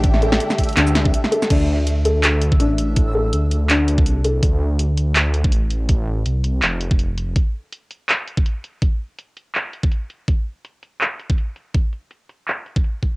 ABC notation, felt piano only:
X:1
M:4/4
L:1/8
Q:"Swing 16ths" 1/4=164
K:Dm
V:1 name="Felt piano"
z A3 D z2 A | D z2 A3 D z | z A3 D z2 A- | A2 z6 |
z8 | z8 | z8 | z8 |
z8 |]